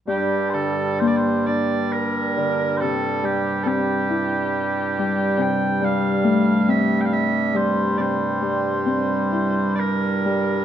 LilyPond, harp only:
\new Staff \with { instrumentName = "Harp" } { \clef bass \time 3/4 \key g \dorian \tempo 4 = 68 g,8 d8 bes8 d'4 d8 | c8 g8 c'8 e'4 g8 | c8 g8 a8 c'4 g8 | c8 g8 c'8 e'4 g8 | }